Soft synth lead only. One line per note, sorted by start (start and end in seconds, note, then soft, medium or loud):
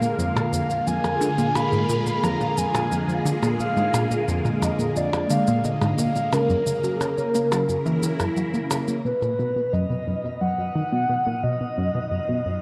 0.00 0.15 F5 loud
0.19 0.89 F5 loud
0.87 1.57 G#5 loud
1.55 2.25 B5 loud
2.23 2.59 A#5 loud
2.58 3.26 G#5 loud
3.60 4.24 F5 loud
4.63 4.98 D#5 loud
4.97 5.32 D5 loud
5.31 5.64 F5 loud
5.65 6.01 D#5 loud
5.99 6.35 F5 loud
6.33 8.37 A#4 loud
9.05 9.74 B4 medium
9.73 10.41 D#5 medium
10.41 11.45 F#5 loud
11.43 12.62 D#5 loud